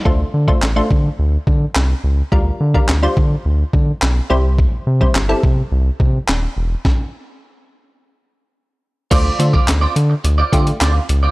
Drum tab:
CC |----------------|----------------|----------------|----------------|
HH |----------------|----------------|----------------|----------------|
CP |----x-------x---|----x-------x---|----x-------x---|----------------|
SD |----o-------o---|----o-------o---|----o-------o---|o---------------|
BD |o--o--o---o-----|o--o--o---o-----|o--o--o---o-----|o---------------|

CC |x---------------|
HH |x-x-x-x-x-xxx-x-|
CP |----x-------x---|
SD |----o-------o---|
BD |o--o------o-----|